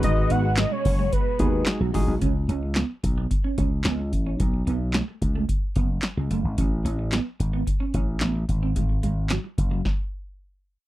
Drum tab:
HH |xxxoxxxo|xxxxxxxx|xxxxxxxx|xxxxxxxx|
CP |--x---x-|--x---x-|--x---x-|--x---x-|
SD |--o---o-|--o---o-|--o---o-|--o---o-|
BD |o--ooo-o|o--ooo-o|o--ooo--|o--ooo-o|

HH |xxxx----|
CP |--x-----|
SD |--o-o---|
BD |o--oo---|